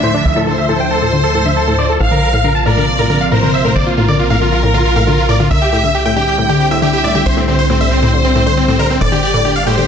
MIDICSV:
0, 0, Header, 1, 8, 480
1, 0, Start_track
1, 0, Tempo, 437956
1, 276, Time_signature, 4, 2, 24, 8
1, 10821, End_track
2, 0, Start_track
2, 0, Title_t, "Violin section"
2, 0, Program_c, 0, 48
2, 0, Note_on_c, 0, 76, 91
2, 420, Note_off_c, 0, 76, 0
2, 517, Note_on_c, 0, 72, 98
2, 2100, Note_off_c, 0, 72, 0
2, 2195, Note_on_c, 0, 77, 99
2, 2819, Note_off_c, 0, 77, 0
2, 2916, Note_on_c, 0, 74, 93
2, 3540, Note_off_c, 0, 74, 0
2, 3636, Note_on_c, 0, 72, 91
2, 4260, Note_off_c, 0, 72, 0
2, 4356, Note_on_c, 0, 70, 95
2, 5940, Note_off_c, 0, 70, 0
2, 6036, Note_on_c, 0, 76, 100
2, 6660, Note_off_c, 0, 76, 0
2, 6757, Note_on_c, 0, 79, 91
2, 7380, Note_off_c, 0, 79, 0
2, 7476, Note_on_c, 0, 76, 95
2, 8100, Note_off_c, 0, 76, 0
2, 8196, Note_on_c, 0, 72, 96
2, 9780, Note_off_c, 0, 72, 0
2, 9875, Note_on_c, 0, 74, 100
2, 10499, Note_off_c, 0, 74, 0
2, 10595, Note_on_c, 0, 72, 95
2, 10821, Note_off_c, 0, 72, 0
2, 10821, End_track
3, 0, Start_track
3, 0, Title_t, "Supersaw synth"
3, 0, Program_c, 1, 81
3, 36, Note_on_c, 1, 72, 87
3, 122, Note_off_c, 1, 72, 0
3, 156, Note_on_c, 1, 62, 64
3, 242, Note_off_c, 1, 62, 0
3, 276, Note_on_c, 1, 76, 97
3, 362, Note_off_c, 1, 76, 0
3, 396, Note_on_c, 1, 69, 61
3, 482, Note_off_c, 1, 69, 0
3, 516, Note_on_c, 1, 69, 65
3, 602, Note_off_c, 1, 69, 0
3, 635, Note_on_c, 1, 76, 85
3, 722, Note_off_c, 1, 76, 0
3, 755, Note_on_c, 1, 69, 63
3, 842, Note_off_c, 1, 69, 0
3, 874, Note_on_c, 1, 79, 88
3, 961, Note_off_c, 1, 79, 0
3, 994, Note_on_c, 1, 69, 61
3, 1081, Note_off_c, 1, 69, 0
3, 1114, Note_on_c, 1, 69, 60
3, 1201, Note_off_c, 1, 69, 0
3, 1355, Note_on_c, 1, 69, 62
3, 1441, Note_off_c, 1, 69, 0
3, 1474, Note_on_c, 1, 69, 62
3, 1561, Note_off_c, 1, 69, 0
3, 1594, Note_on_c, 1, 76, 92
3, 1681, Note_off_c, 1, 76, 0
3, 1716, Note_on_c, 1, 69, 63
3, 1802, Note_off_c, 1, 69, 0
3, 1836, Note_on_c, 1, 69, 66
3, 1922, Note_off_c, 1, 69, 0
3, 1956, Note_on_c, 1, 74, 86
3, 2042, Note_off_c, 1, 74, 0
3, 2076, Note_on_c, 1, 69, 64
3, 2162, Note_off_c, 1, 69, 0
3, 2196, Note_on_c, 1, 77, 94
3, 2282, Note_off_c, 1, 77, 0
3, 2316, Note_on_c, 1, 70, 61
3, 2402, Note_off_c, 1, 70, 0
3, 2436, Note_on_c, 1, 70, 63
3, 2522, Note_off_c, 1, 70, 0
3, 2555, Note_on_c, 1, 77, 89
3, 2642, Note_off_c, 1, 77, 0
3, 2675, Note_on_c, 1, 70, 61
3, 2762, Note_off_c, 1, 70, 0
3, 2794, Note_on_c, 1, 81, 91
3, 2881, Note_off_c, 1, 81, 0
3, 2915, Note_on_c, 1, 70, 62
3, 3002, Note_off_c, 1, 70, 0
3, 3035, Note_on_c, 1, 70, 59
3, 3122, Note_off_c, 1, 70, 0
3, 3276, Note_on_c, 1, 70, 65
3, 3362, Note_off_c, 1, 70, 0
3, 3396, Note_on_c, 1, 70, 60
3, 3482, Note_off_c, 1, 70, 0
3, 3516, Note_on_c, 1, 77, 92
3, 3602, Note_off_c, 1, 77, 0
3, 3637, Note_on_c, 1, 70, 64
3, 3722, Note_off_c, 1, 70, 0
3, 3756, Note_on_c, 1, 70, 64
3, 3842, Note_off_c, 1, 70, 0
3, 3876, Note_on_c, 1, 76, 89
3, 3962, Note_off_c, 1, 76, 0
3, 3996, Note_on_c, 1, 70, 62
3, 4082, Note_off_c, 1, 70, 0
3, 4116, Note_on_c, 1, 74, 99
3, 4202, Note_off_c, 1, 74, 0
3, 4236, Note_on_c, 1, 65, 58
3, 4322, Note_off_c, 1, 65, 0
3, 4356, Note_on_c, 1, 65, 61
3, 4442, Note_off_c, 1, 65, 0
3, 4476, Note_on_c, 1, 74, 86
3, 4562, Note_off_c, 1, 74, 0
3, 4596, Note_on_c, 1, 65, 61
3, 4682, Note_off_c, 1, 65, 0
3, 4715, Note_on_c, 1, 77, 91
3, 4802, Note_off_c, 1, 77, 0
3, 4836, Note_on_c, 1, 65, 60
3, 4922, Note_off_c, 1, 65, 0
3, 4956, Note_on_c, 1, 65, 63
3, 5042, Note_off_c, 1, 65, 0
3, 5197, Note_on_c, 1, 65, 62
3, 5282, Note_off_c, 1, 65, 0
3, 5316, Note_on_c, 1, 65, 63
3, 5402, Note_off_c, 1, 65, 0
3, 5436, Note_on_c, 1, 77, 88
3, 5522, Note_off_c, 1, 77, 0
3, 5556, Note_on_c, 1, 65, 62
3, 5642, Note_off_c, 1, 65, 0
3, 5677, Note_on_c, 1, 65, 64
3, 5762, Note_off_c, 1, 65, 0
3, 5796, Note_on_c, 1, 74, 87
3, 5882, Note_off_c, 1, 74, 0
3, 5917, Note_on_c, 1, 65, 65
3, 6002, Note_off_c, 1, 65, 0
3, 6037, Note_on_c, 1, 76, 98
3, 6122, Note_off_c, 1, 76, 0
3, 6157, Note_on_c, 1, 67, 60
3, 6243, Note_off_c, 1, 67, 0
3, 6277, Note_on_c, 1, 67, 63
3, 6362, Note_off_c, 1, 67, 0
3, 6396, Note_on_c, 1, 76, 87
3, 6482, Note_off_c, 1, 76, 0
3, 6517, Note_on_c, 1, 67, 62
3, 6602, Note_off_c, 1, 67, 0
3, 6636, Note_on_c, 1, 79, 92
3, 6722, Note_off_c, 1, 79, 0
3, 6756, Note_on_c, 1, 67, 61
3, 6842, Note_off_c, 1, 67, 0
3, 6876, Note_on_c, 1, 67, 61
3, 6962, Note_off_c, 1, 67, 0
3, 7117, Note_on_c, 1, 67, 63
3, 7202, Note_off_c, 1, 67, 0
3, 7236, Note_on_c, 1, 67, 62
3, 7322, Note_off_c, 1, 67, 0
3, 7356, Note_on_c, 1, 76, 91
3, 7442, Note_off_c, 1, 76, 0
3, 7476, Note_on_c, 1, 67, 64
3, 7562, Note_off_c, 1, 67, 0
3, 7597, Note_on_c, 1, 67, 65
3, 7683, Note_off_c, 1, 67, 0
3, 7717, Note_on_c, 1, 74, 90
3, 7803, Note_off_c, 1, 74, 0
3, 7836, Note_on_c, 1, 67, 66
3, 7922, Note_off_c, 1, 67, 0
3, 7956, Note_on_c, 1, 72, 97
3, 8042, Note_off_c, 1, 72, 0
3, 8076, Note_on_c, 1, 60, 61
3, 8162, Note_off_c, 1, 60, 0
3, 8197, Note_on_c, 1, 60, 64
3, 8282, Note_off_c, 1, 60, 0
3, 8315, Note_on_c, 1, 72, 84
3, 8402, Note_off_c, 1, 72, 0
3, 8436, Note_on_c, 1, 60, 63
3, 8522, Note_off_c, 1, 60, 0
3, 8556, Note_on_c, 1, 76, 90
3, 8642, Note_off_c, 1, 76, 0
3, 8676, Note_on_c, 1, 60, 62
3, 8762, Note_off_c, 1, 60, 0
3, 8797, Note_on_c, 1, 60, 62
3, 8883, Note_off_c, 1, 60, 0
3, 9036, Note_on_c, 1, 60, 64
3, 9122, Note_off_c, 1, 60, 0
3, 9157, Note_on_c, 1, 60, 60
3, 9242, Note_off_c, 1, 60, 0
3, 9276, Note_on_c, 1, 72, 92
3, 9362, Note_off_c, 1, 72, 0
3, 9396, Note_on_c, 1, 60, 63
3, 9482, Note_off_c, 1, 60, 0
3, 9515, Note_on_c, 1, 60, 64
3, 9602, Note_off_c, 1, 60, 0
3, 9636, Note_on_c, 1, 70, 89
3, 9722, Note_off_c, 1, 70, 0
3, 9756, Note_on_c, 1, 60, 65
3, 9842, Note_off_c, 1, 60, 0
3, 9875, Note_on_c, 1, 74, 97
3, 9962, Note_off_c, 1, 74, 0
3, 9994, Note_on_c, 1, 67, 61
3, 10081, Note_off_c, 1, 67, 0
3, 10114, Note_on_c, 1, 67, 64
3, 10201, Note_off_c, 1, 67, 0
3, 10234, Note_on_c, 1, 74, 86
3, 10321, Note_off_c, 1, 74, 0
3, 10355, Note_on_c, 1, 67, 63
3, 10441, Note_off_c, 1, 67, 0
3, 10475, Note_on_c, 1, 77, 90
3, 10562, Note_off_c, 1, 77, 0
3, 10595, Note_on_c, 1, 67, 61
3, 10682, Note_off_c, 1, 67, 0
3, 10714, Note_on_c, 1, 67, 63
3, 10801, Note_off_c, 1, 67, 0
3, 10821, End_track
4, 0, Start_track
4, 0, Title_t, "Analog synth pad"
4, 0, Program_c, 2, 89
4, 0, Note_on_c, 2, 50, 79
4, 0, Note_on_c, 2, 53, 72
4, 0, Note_on_c, 2, 57, 72
4, 0, Note_on_c, 2, 64, 81
4, 2157, Note_off_c, 2, 50, 0
4, 2157, Note_off_c, 2, 57, 0
4, 2157, Note_off_c, 2, 64, 0
4, 2196, Note_on_c, 2, 48, 79
4, 2196, Note_on_c, 2, 58, 70
4, 2196, Note_on_c, 2, 65, 85
4, 5992, Note_off_c, 2, 53, 0
4, 5998, Note_off_c, 2, 48, 0
4, 5998, Note_off_c, 2, 58, 0
4, 5998, Note_off_c, 2, 65, 0
4, 6036, Note_on_c, 2, 50, 78
4, 6036, Note_on_c, 2, 55, 70
4, 6036, Note_on_c, 2, 60, 73
4, 6036, Note_on_c, 2, 64, 85
4, 9838, Note_off_c, 2, 60, 0
4, 9838, Note_off_c, 2, 64, 0
4, 9877, Note_on_c, 2, 58, 72
4, 9877, Note_on_c, 2, 67, 87
4, 10821, Note_off_c, 2, 50, 0
4, 10821, Note_off_c, 2, 55, 0
4, 10821, Note_off_c, 2, 58, 0
4, 10821, Note_off_c, 2, 67, 0
4, 10821, End_track
5, 0, Start_track
5, 0, Title_t, "Synth arpeggio sound"
5, 0, Program_c, 3, 84
5, 35, Note_on_c, 3, 45, 98
5, 95, Note_off_c, 3, 45, 0
5, 155, Note_on_c, 3, 50, 72
5, 244, Note_off_c, 3, 50, 0
5, 395, Note_on_c, 3, 45, 102
5, 455, Note_off_c, 3, 45, 0
5, 516, Note_on_c, 3, 50, 74
5, 604, Note_off_c, 3, 50, 0
5, 755, Note_on_c, 3, 45, 93
5, 815, Note_off_c, 3, 45, 0
5, 876, Note_on_c, 3, 50, 77
5, 964, Note_off_c, 3, 50, 0
5, 1115, Note_on_c, 3, 45, 98
5, 1174, Note_off_c, 3, 45, 0
5, 1235, Note_on_c, 3, 50, 75
5, 1324, Note_off_c, 3, 50, 0
5, 1475, Note_on_c, 3, 45, 96
5, 1534, Note_off_c, 3, 45, 0
5, 1595, Note_on_c, 3, 50, 76
5, 1684, Note_off_c, 3, 50, 0
5, 1835, Note_on_c, 3, 45, 93
5, 1894, Note_off_c, 3, 45, 0
5, 1955, Note_on_c, 3, 50, 72
5, 2044, Note_off_c, 3, 50, 0
5, 2195, Note_on_c, 3, 45, 98
5, 2254, Note_off_c, 3, 45, 0
5, 2315, Note_on_c, 3, 50, 74
5, 2404, Note_off_c, 3, 50, 0
5, 2555, Note_on_c, 3, 45, 98
5, 2614, Note_off_c, 3, 45, 0
5, 2675, Note_on_c, 3, 50, 77
5, 2764, Note_off_c, 3, 50, 0
5, 2915, Note_on_c, 3, 45, 98
5, 2974, Note_off_c, 3, 45, 0
5, 3035, Note_on_c, 3, 50, 75
5, 3124, Note_off_c, 3, 50, 0
5, 3275, Note_on_c, 3, 45, 96
5, 3334, Note_off_c, 3, 45, 0
5, 3396, Note_on_c, 3, 50, 73
5, 3484, Note_off_c, 3, 50, 0
5, 3636, Note_on_c, 3, 45, 99
5, 3695, Note_off_c, 3, 45, 0
5, 3755, Note_on_c, 3, 50, 72
5, 3844, Note_off_c, 3, 50, 0
5, 3995, Note_on_c, 3, 45, 99
5, 4055, Note_off_c, 3, 45, 0
5, 4115, Note_on_c, 3, 50, 78
5, 4204, Note_off_c, 3, 50, 0
5, 4356, Note_on_c, 3, 45, 95
5, 4415, Note_off_c, 3, 45, 0
5, 4476, Note_on_c, 3, 50, 74
5, 4564, Note_off_c, 3, 50, 0
5, 4716, Note_on_c, 3, 45, 99
5, 4775, Note_off_c, 3, 45, 0
5, 4835, Note_on_c, 3, 50, 75
5, 4924, Note_off_c, 3, 50, 0
5, 5075, Note_on_c, 3, 45, 97
5, 5135, Note_off_c, 3, 45, 0
5, 5195, Note_on_c, 3, 50, 73
5, 5284, Note_off_c, 3, 50, 0
5, 5436, Note_on_c, 3, 45, 103
5, 5495, Note_off_c, 3, 45, 0
5, 5556, Note_on_c, 3, 50, 84
5, 5644, Note_off_c, 3, 50, 0
5, 5795, Note_on_c, 3, 45, 95
5, 5855, Note_off_c, 3, 45, 0
5, 5915, Note_on_c, 3, 50, 74
5, 6004, Note_off_c, 3, 50, 0
5, 6035, Note_on_c, 3, 50, 78
5, 6124, Note_off_c, 3, 50, 0
5, 6275, Note_on_c, 3, 45, 95
5, 6334, Note_off_c, 3, 45, 0
5, 6395, Note_on_c, 3, 50, 74
5, 6484, Note_off_c, 3, 50, 0
5, 6635, Note_on_c, 3, 45, 102
5, 6694, Note_off_c, 3, 45, 0
5, 6755, Note_on_c, 3, 50, 77
5, 6844, Note_off_c, 3, 50, 0
5, 6995, Note_on_c, 3, 45, 93
5, 7054, Note_off_c, 3, 45, 0
5, 7115, Note_on_c, 3, 50, 75
5, 7204, Note_off_c, 3, 50, 0
5, 7355, Note_on_c, 3, 45, 102
5, 7414, Note_off_c, 3, 45, 0
5, 7475, Note_on_c, 3, 50, 86
5, 7564, Note_off_c, 3, 50, 0
5, 7715, Note_on_c, 3, 45, 99
5, 7774, Note_off_c, 3, 45, 0
5, 7835, Note_on_c, 3, 50, 72
5, 7924, Note_off_c, 3, 50, 0
5, 8075, Note_on_c, 3, 45, 101
5, 8134, Note_off_c, 3, 45, 0
5, 8195, Note_on_c, 3, 50, 74
5, 8284, Note_off_c, 3, 50, 0
5, 8435, Note_on_c, 3, 45, 95
5, 8494, Note_off_c, 3, 45, 0
5, 8555, Note_on_c, 3, 50, 76
5, 8644, Note_off_c, 3, 50, 0
5, 8795, Note_on_c, 3, 45, 100
5, 8854, Note_off_c, 3, 45, 0
5, 8915, Note_on_c, 3, 50, 78
5, 9004, Note_off_c, 3, 50, 0
5, 9155, Note_on_c, 3, 45, 94
5, 9214, Note_off_c, 3, 45, 0
5, 9276, Note_on_c, 3, 50, 76
5, 9364, Note_off_c, 3, 50, 0
5, 9515, Note_on_c, 3, 45, 98
5, 9574, Note_off_c, 3, 45, 0
5, 9635, Note_on_c, 3, 50, 73
5, 9724, Note_off_c, 3, 50, 0
5, 9875, Note_on_c, 3, 45, 98
5, 9934, Note_off_c, 3, 45, 0
5, 9995, Note_on_c, 3, 50, 75
5, 10084, Note_off_c, 3, 50, 0
5, 10235, Note_on_c, 3, 45, 102
5, 10294, Note_off_c, 3, 45, 0
5, 10355, Note_on_c, 3, 50, 76
5, 10444, Note_off_c, 3, 50, 0
5, 10595, Note_on_c, 3, 45, 101
5, 10654, Note_off_c, 3, 45, 0
5, 10715, Note_on_c, 3, 50, 73
5, 10804, Note_off_c, 3, 50, 0
5, 10821, End_track
6, 0, Start_track
6, 0, Title_t, "Analog synth bass"
6, 0, Program_c, 4, 38
6, 0, Note_on_c, 4, 38, 86
6, 252, Note_off_c, 4, 38, 0
6, 276, Note_on_c, 4, 38, 85
6, 2172, Note_off_c, 4, 38, 0
6, 2196, Note_on_c, 4, 34, 88
6, 4092, Note_off_c, 4, 34, 0
6, 4116, Note_on_c, 4, 34, 84
6, 6012, Note_off_c, 4, 34, 0
6, 6036, Note_on_c, 4, 36, 89
6, 7932, Note_off_c, 4, 36, 0
6, 7956, Note_on_c, 4, 36, 85
6, 9852, Note_off_c, 4, 36, 0
6, 9875, Note_on_c, 4, 31, 86
6, 10821, Note_off_c, 4, 31, 0
6, 10821, End_track
7, 0, Start_track
7, 0, Title_t, "Downlifter"
7, 0, Program_c, 5, 103
7, 0, Note_on_c, 5, 60, 68
7, 2196, Note_off_c, 5, 60, 0
7, 10821, End_track
8, 0, Start_track
8, 0, Title_t, "Riser"
8, 0, Program_c, 6, 103
8, 9875, Note_on_c, 6, 60, 72
8, 10821, Note_off_c, 6, 60, 0
8, 10821, End_track
0, 0, End_of_file